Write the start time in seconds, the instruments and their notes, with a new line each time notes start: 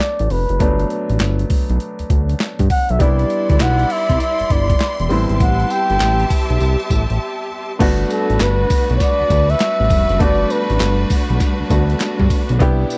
Already playing: grand piano F#3 A3 B3 D4, muted trumpet D5
0.00 snare, clap, closed hi-hat
0.19 analog synth bass A1, closed hi-hat
0.30 analog synth bass F1, muted trumpet B4, open hi-hat
0.49 analog synth bass F#1, closed hi-hat
0.59 analog synth bass G1, grand piano F#3 A3 B3 D4, kick, closed hi-hat
0.80 closed hi-hat
0.90 closed hi-hat
1.10 analog synth bass A1, closed hi-hat
1.20 analog synth bass G1, snare, clap, closed hi-hat
1.39 closed hi-hat
1.50 kick, open hi-hat
1.70 analog synth bass B1, closed hi-hat
1.80 closed hi-hat
1.99 analog synth bass D2, closed hi-hat
2.10 analog synth bass D2, kick, closed hi-hat
2.29 closed hi-hat
2.40 snare, clap, closed hi-hat
2.59 analog synth bass G2, kick, closed hi-hat
2.70 muted trumpet F#5, kick, open hi-hat
2.89 analog synth bass B1, muted trumpet E5, closed hi-hat
2.99 analog synth bass C2, grand piano G3 B3 D4 E4, string section E4 D5 B5 C6, muted trumpet D5, kick, closed hi-hat
3.19 closed hi-hat
3.30 closed hi-hat
3.49 analog synth bass D2, muted trumpet D5, kick, closed hi-hat
3.60 analog synth bass B1, muted trumpet F#5, snare, clap, closed hi-hat
3.79 closed hi-hat
3.90 muted trumpet E5, open hi-hat
4.09 analog synth bass C2, kick, closed hi-hat
4.20 muted trumpet E5, closed hi-hat
4.39 analog synth bass G1, closed hi-hat
4.50 analog synth bass G1, muted trumpet D5, kick, closed hi-hat
4.70 kick, closed hi-hat
4.80 snare, clap, closed hi-hat
4.99 analog synth bass E1, closed hi-hat
5.09 analog synth bass A1, grand piano G3 B3 C4 E4, string section G4 E5 A5, open hi-hat
5.29 analog synth bass G#1, closed hi-hat
5.40 analog synth bass A1, muted trumpet F#5, kick, closed hi-hat
5.60 closed hi-hat
5.70 muted trumpet G5, closed hi-hat, tambourine
5.90 analog synth bass G1, closed hi-hat
6.00 analog synth bass A1, snare, clap, closed hi-hat, tambourine
6.20 closed hi-hat
6.30 kick, open hi-hat, tambourine
6.50 analog synth bass B1, closed hi-hat
6.60 analog synth bass C2, closed hi-hat, tambourine
6.79 closed hi-hat
6.90 analog synth bass A1, kick, closed hi-hat, tambourine
7.10 analog synth bass A1, closed hi-hat
7.79 analog synth bass G1, string section G3 D4 F#4 B4, grand piano A3 B3 D4 F#4, kick, closed hi-hat, crash
8.10 muted trumpet A4, closed hi-hat, tambourine
8.30 analog synth bass A1, closed hi-hat
8.40 analog synth bass G1, muted trumpet B4, snare, clap, closed hi-hat, tambourine
8.70 kick, open hi-hat, tambourine
8.90 analog synth bass B1, closed hi-hat
8.97 muted trumpet C#5, kick, snare, closed hi-hat, tambourine
9.01 muted trumpet D5
9.20 analog synth bass D2
9.30 analog synth bass D2, kick, closed hi-hat, tambourine
9.50 muted trumpet E5, closed hi-hat
9.60 snare, clap, closed hi-hat, tambourine
9.80 analog synth bass A1
9.90 analog synth bass F1, kick, open hi-hat, tambourine
10.09 analog synth bass F#1, closed hi-hat
10.19 analog synth bass G1, grand piano A3 B3 D4 F#4, muted trumpet D5, kick, closed hi-hat
10.50 muted trumpet B4, closed hi-hat, tambourine
10.70 analog synth bass A1, closed hi-hat
10.80 analog synth bass G1, snare, clap, closed hi-hat, tambourine
11.10 kick, open hi-hat, tambourine
11.30 analog synth bass B1, closed hi-hat
11.40 kick, snare, closed hi-hat, tambourine
11.60 analog synth bass D2
11.70 analog synth bass D2, grand piano A3 B3 D4 F#4, kick, closed hi-hat, tambourine
11.90 closed hi-hat
12.00 snare, clap, closed hi-hat, tambourine
12.20 analog synth bass G2, kick
12.30 kick, open hi-hat, tambourine
12.49 analog synth bass B1, closed hi-hat
12.59 analog synth bass C2, string section B2 B3 E4, grand piano B3 D4 E4 G4, kick, closed hi-hat
12.90 closed hi-hat, tambourine